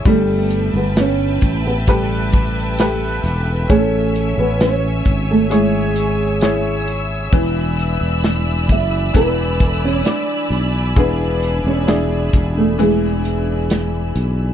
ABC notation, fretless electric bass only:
X:1
M:4/4
L:1/16
Q:1/4=66
K:Emix
V:1 name="Fretless electric bass" clef=bass
=G,,,3 G,,,3 A,,,8 E,,,2 | A,,,3 A,,,3 G,,,8- G,,,2 | E,,,3 E,,,3 F,,,2 E,,,4 z2 B,,,2 | E,,,3 E,,,3 E,,,8 B,,,2 |]